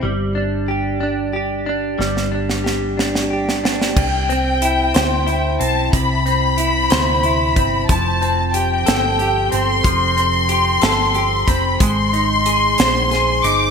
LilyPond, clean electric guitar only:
\new Staff \with { instrumentName = "Clean electric guitar" } { \time 6/8 \key c \major \tempo 4. = 61 g8 d'8 g'8 d'8 g'8 d'8 | g8 d'8 g'8 d'8 g'8 d'8 | r8 c'8 e'8 c''8 e'8 c'8 | c8 c'8 e'8 c''8 e'8 c'8 |
f8 c'8 g'8 a'8 g'8 c'8 | f8 c'8 g'8 a'8 g'8 c'8 | aes8 ees'8 aes'8 c''8 aes'8 ees'8 | }